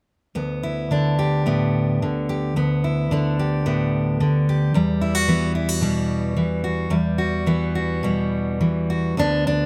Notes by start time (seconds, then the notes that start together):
0.35 D2 B3
0.63 E4
0.91 D3 D4
1.19 G4
1.46 A2 B3
2.02 D3
2.29 G4
2.56 D2 B3
2.84 E4
3.11 D3 D4
3.39 G4
3.66 A2 B3
4.20 D3
4.49 G4
4.74 E2 G3
5.01 E4
5.15 F#4
5.28 E3 B3
5.55 E4
5.69 F#4
5.81 B2 G3
6.37 E3
6.64 F#4
6.90 E2 G3
7.18 F#4
7.47 E3 B3
7.75 F#4
8.03 B2 G3
8.61 E3
8.90 F#4
9.17 D2 D3 B3 D4
9.47 D4